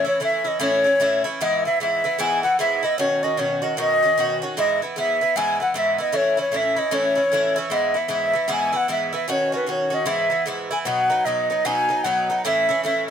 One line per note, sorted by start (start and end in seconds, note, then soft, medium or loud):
0.05 0.19 E3 soft
0.05 0.20 C#4 soft
0.05 0.20 E4 medium
0.05 0.21 C#5 medium
0.20 0.45 A2 medium
0.20 0.45 E3 medium
0.20 0.44 C#4 medium
0.20 0.43 E4 medium
0.20 0.49 E5 medium
0.44 0.59 E3 soft
0.44 0.59 C#4 soft
0.44 0.60 E4 soft
0.44 0.61 D#5 medium
0.60 0.85 A2 medium
0.60 0.85 E3 medium
0.60 0.84 C#4 medium
0.60 0.83 E4 medium
0.60 1.21 C#5 loud
0.84 0.99 E3 soft
0.84 1.00 C#4 soft
0.84 1.00 E4 medium
1.00 1.25 A2 medium
1.00 1.25 E3 medium
1.00 1.24 C#4 medium
1.00 1.23 E4 medium
1.24 1.40 E3 medium
1.24 1.40 C#4 medium
1.24 1.40 E4 medium
1.41 1.65 G#2 medium
1.41 1.65 E3 medium
1.41 1.65 B3 medium
1.41 1.64 E4 medium
1.41 1.64 D#5 medium
1.65 1.80 E3 soft
1.65 1.80 B3 soft
1.65 1.80 E4 medium
1.65 1.79 E5 medium
1.80 2.04 G#2 medium
1.80 2.05 E3 medium
1.80 2.04 B3 medium
1.80 2.03 E4 medium
1.80 2.22 E5 medium
2.04 2.18 E3 soft
2.04 2.19 B3 medium
2.04 2.19 E4 medium
2.19 2.43 G#2 medium
2.19 2.44 E3 medium
2.19 2.43 B3 medium
2.19 2.42 E4 loud
2.19 2.43 G#5 loud
2.43 2.59 E3 soft
2.43 2.59 B3 soft
2.43 2.58 E4 soft
2.43 2.57 F#5 loud
2.59 2.83 G#2 medium
2.59 2.83 E3 medium
2.59 2.83 B3 medium
2.59 2.81 E4 medium
2.59 2.86 E5 loud
2.83 2.99 E3 soft
2.83 2.99 B3 medium
2.83 2.98 E4 medium
2.83 2.99 D#5 medium
2.98 3.22 B2 medium
2.98 3.23 D#3 medium
2.98 3.23 C#4 medium
2.98 3.22 F#4 medium
2.98 3.25 C#5 medium
3.23 3.37 D#3 soft
3.23 3.38 C#4 medium
3.23 3.38 F#4 medium
3.23 3.40 D#5 medium
3.37 3.62 B2 medium
3.37 3.62 D#3 medium
3.37 3.62 C#4 medium
3.37 3.61 F#4 medium
3.37 3.65 C#5 medium
3.62 3.77 D#3 soft
3.62 3.77 C#4 soft
3.62 3.77 F#4 medium
3.62 3.77 D#5 medium
3.77 4.01 B2 medium
3.77 4.02 D#3 medium
3.77 4.02 C#4 medium
3.77 4.01 F#4 medium
3.77 4.38 D#5 loud
4.03 4.17 D#3 soft
4.03 4.18 C#4 soft
4.03 4.17 F#4 medium
4.18 4.41 B2 medium
4.18 4.42 D#3 medium
4.18 4.42 C#4 medium
4.18 4.41 F#4 medium
4.42 4.57 D#3 medium
4.42 4.57 C#4 medium
4.42 4.56 F#4 medium
4.57 4.81 G#2 medium
4.57 4.81 E3 medium
4.57 4.81 B3 medium
4.57 4.81 E4 medium
4.57 4.80 D#5 loud
4.82 4.96 E3 soft
4.82 4.97 B3 soft
4.82 4.96 E4 soft
4.96 5.20 G#2 medium
4.96 5.21 E3 medium
4.96 5.21 B3 medium
4.96 5.20 E4 medium
4.96 5.38 E5 medium
5.21 5.36 E3 soft
5.21 5.36 B3 soft
5.21 5.35 E4 medium
5.36 5.60 G#2 medium
5.36 5.60 E3 medium
5.36 5.60 B3 loud
5.36 5.59 E4 loud
5.36 5.60 G#5 loud
5.60 5.74 E3 soft
5.60 5.75 B3 soft
5.60 5.74 E4 soft
5.60 5.75 F#5 loud
5.74 5.99 G#2 medium
5.74 5.99 E3 medium
5.74 5.99 B3 medium
5.74 5.97 E4 medium
5.74 5.98 E5 medium
5.98 6.12 E3 soft
5.98 6.13 B3 medium
5.98 6.13 E4 medium
5.98 6.18 D#5 medium
6.12 6.37 A2 medium
6.12 6.38 E3 medium
6.12 6.37 C#4 medium
6.12 6.36 E4 medium
6.12 6.39 C#5 loud
6.37 6.51 E3 soft
6.37 6.53 C#4 medium
6.37 6.53 E4 medium
6.41 6.58 C#5 medium
6.52 6.77 A2 medium
6.52 6.77 E3 medium
6.52 6.76 C#4 medium
6.52 6.75 E4 medium
6.56 6.80 E5 medium
6.76 6.90 E3 soft
6.76 6.91 C#4 soft
6.76 6.91 E4 medium
6.76 6.96 D#5 medium
6.91 7.16 A2 medium
6.91 7.16 E3 medium
6.91 7.16 C#4 medium
6.91 7.14 E4 medium
6.91 7.57 C#5 medium
7.15 7.31 E3 soft
7.15 7.32 C#4 soft
7.15 7.31 E4 medium
7.32 7.56 A2 medium
7.32 7.57 E3 medium
7.32 7.57 C#4 medium
7.32 7.55 E4 medium
7.56 7.70 E3 medium
7.56 7.71 C#4 medium
7.56 7.70 E4 medium
7.70 7.95 G#2 medium
7.70 7.95 E3 medium
7.70 7.94 B3 medium
7.70 7.93 E4 medium
7.70 7.99 D#5 medium
7.94 8.08 E3 soft
7.94 8.09 B3 soft
7.94 8.09 E4 medium
7.94 8.12 E5 medium
8.08 8.34 G#2 medium
8.08 8.34 E3 medium
8.08 8.34 B3 medium
8.08 8.32 E4 medium
8.13 8.48 E5 medium
8.34 8.47 E3 soft
8.34 8.47 B3 medium
8.34 8.48 E4 medium
8.48 8.73 G#2 medium
8.48 8.74 E3 medium
8.48 8.72 B3 medium
8.48 8.71 E4 medium
8.52 8.78 G#5 loud
8.73 8.88 E3 soft
8.73 8.88 B3 medium
8.73 8.89 E4 medium
8.73 8.90 F#5 loud
8.88 9.13 G#2 medium
8.88 9.14 E3 medium
8.88 9.13 B3 medium
8.88 9.11 E4 medium
8.88 9.13 E5 medium
9.13 9.28 E3 soft
9.13 9.28 B3 medium
9.13 9.28 E4 medium
9.13 9.29 E5 medium
9.28 9.53 B2 medium
9.28 9.53 D#3 medium
9.28 9.52 C#4 medium
9.28 9.51 F#4 medium
9.28 9.53 C#5 medium
9.52 9.66 D#3 soft
9.52 9.67 C#4 medium
9.52 9.67 F#4 medium
9.52 9.69 B4 medium
9.67 9.92 B2 medium
9.67 9.91 D#3 medium
9.67 9.90 C#4 medium
9.67 9.89 F#4 medium
9.71 9.96 C#5 medium
9.90 10.05 D#3 soft
9.90 10.06 C#4 soft
9.90 10.06 F#4 medium
9.94 10.08 D#5 medium
10.06 10.31 G#2 medium
10.06 10.31 E3 medium
10.06 10.30 B3 medium
10.06 10.29 E4 medium
10.06 10.44 E5 medium
10.30 10.45 E3 soft
10.30 10.46 B3 soft
10.30 10.46 E4 soft
10.46 10.71 G#2 medium
10.46 10.71 E3 medium
10.46 10.71 B3 medium
10.46 10.69 E4 medium
10.71 10.86 E3 soft
10.71 10.86 B3 medium
10.71 10.86 E4 medium
10.71 10.79 G#5 medium
10.85 11.10 B2 medium
10.85 11.10 F#3 medium
10.85 11.09 B3 medium
10.85 11.08 D#4 medium
10.85 11.27 F#5 medium
11.10 11.25 F#3 soft
11.10 11.26 B3 soft
11.10 11.25 D#4 medium
11.25 11.50 B2 medium
11.25 11.51 F#3 medium
11.25 11.49 B3 medium
11.25 11.49 D#4 medium
11.25 11.67 D#5 medium
11.50 11.64 F#3 medium
11.50 11.65 B3 soft
11.50 11.65 D#4 soft
11.65 11.90 B2 medium
11.65 11.90 F#3 medium
11.65 11.89 B3 medium
11.65 11.88 D#4 medium
11.65 12.06 G#5 loud
11.89 12.04 F#3 soft
11.89 12.05 B3 soft
11.89 12.04 D#4 soft
12.04 12.29 B2 medium
12.04 12.29 F#3 medium
12.04 12.29 B3 medium
12.04 12.28 D#4 medium
12.04 12.44 F#5 medium
12.30 12.45 F#3 soft
12.30 12.45 B3 soft
12.30 12.45 D#4 medium
12.45 12.69 A2 medium
12.45 12.69 E3 medium
12.45 12.69 C#4 medium
12.45 12.68 E4 medium
12.45 12.81 E5 loud
12.69 12.83 E3 medium
12.69 12.84 C#4 soft
12.69 12.84 E4 medium
12.84 13.08 A2 medium
12.84 13.09 E3 medium
12.84 13.08 C#4 medium
12.84 13.07 E4 medium
12.84 13.07 E5 medium